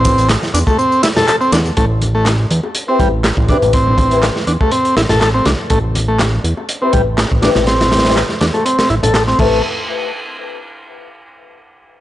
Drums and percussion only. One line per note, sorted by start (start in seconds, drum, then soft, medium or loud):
0.04 kick loud
0.04 closed hi-hat medium
0.04 ride medium
0.04 tambourine medium
0.04 high conga loud
0.18 closed hi-hat soft
0.18 tambourine soft
0.29 snare loud
0.29 clap loud
0.29 closed hi-hat medium
0.29 tambourine soft
0.29 high conga medium
0.43 snare soft
0.43 tambourine soft
0.55 closed hi-hat medium
0.55 ride medium
0.55 tambourine medium
0.67 kick medium
0.67 tambourine soft
0.67 high bongo medium
0.79 tambourine soft
0.92 tambourine soft
1.03 snare loud
1.03 closed hi-hat medium
1.03 ride medium
1.03 tambourine medium
1.03 high bongo soft
1.16 snare loud
1.16 closed hi-hat medium
1.16 tambourine soft
1.16 low conga loud
1.28 clap loud
1.28 closed hi-hat medium
1.28 tambourine soft
1.28 high bongo medium
1.41 tambourine soft
1.52 snare loud
1.52 closed hi-hat medium
1.52 ride medium
1.52 tambourine medium
1.52 high bongo medium
1.52 high conga medium
1.66 tambourine soft
1.77 kick loud
1.77 closed hi-hat medium
2.01 closed hi-hat medium
2.01 high conga medium
2.25 snare loud
2.25 clap loud
2.25 closed hi-hat medium
2.25 high conga medium
2.51 closed hi-hat medium
2.63 high bongo medium
2.75 closed hi-hat medium
3.00 kick loud
3.00 closed hi-hat medium
3.24 snare loud
3.24 clap loud
3.24 closed hi-hat medium
3.37 kick medium
3.48 kick medium
3.48 closed hi-hat medium
3.48 high bongo medium
3.48 high conga medium
3.62 closed hi-hat soft
3.62 low conga medium
3.73 kick loud
3.73 closed hi-hat medium
3.87 low conga medium
3.98 kick medium
3.98 closed hi-hat medium
3.98 high conga medium
4.11 closed hi-hat soft
4.23 snare loud
4.23 clap loud
4.23 closed hi-hat medium
4.23 high conga medium
4.36 snare soft
4.47 closed hi-hat medium
4.61 kick loud
4.61 high bongo medium
4.71 closed hi-hat medium
4.85 closed hi-hat soft
4.97 snare loud
4.97 closed hi-hat medium
4.97 high bongo soft
5.09 snare loud
5.09 closed hi-hat medium
5.09 low conga medium
5.21 snare loud
5.21 clap loud
5.21 closed hi-hat medium
5.21 high bongo medium
5.45 snare loud
5.45 closed hi-hat medium
5.45 high bongo medium
5.45 high conga medium
5.70 kick loud
5.70 closed hi-hat medium
5.95 closed hi-hat medium
5.95 high conga medium
6.19 snare loud
6.19 clap loud
6.19 closed hi-hat medium
6.19 high conga medium
6.44 closed hi-hat medium
6.57 high bongo medium
6.69 closed hi-hat medium
6.93 kick loud
6.93 closed hi-hat medium
7.18 snare loud
7.18 clap loud
7.18 closed hi-hat medium
7.32 kick medium
7.42 snare loud
7.42 closed hi-hat medium
7.42 high bongo medium
7.42 high conga medium
7.55 snare loud
7.55 closed hi-hat medium
7.55 low conga medium
7.67 snare loud
7.67 closed hi-hat medium
7.80 snare medium
7.80 closed hi-hat medium
7.80 low conga medium
7.92 snare medium
7.92 closed hi-hat medium
7.92 high conga medium
7.98 snare medium
7.98 closed hi-hat medium
8.05 snare medium
8.05 closed hi-hat medium
8.10 snare medium
8.10 closed hi-hat medium
8.16 snare loud
8.16 clap loud
8.16 closed hi-hat medium
8.16 high conga medium
8.29 snare soft
8.41 snare loud
8.41 closed hi-hat medium
8.54 closed hi-hat soft
8.54 high bongo medium
8.66 closed hi-hat medium
8.79 snare loud
8.79 closed hi-hat medium
8.90 closed hi-hat soft
8.90 high bongo soft
9.03 closed hi-hat medium
9.03 low conga medium
9.14 snare loud
9.14 clap loud
9.14 closed hi-hat medium
9.14 high bongo medium
9.27 snare soft
9.39 kick loud
9.39 crash medium
9.39 high bongo medium
9.39 high conga medium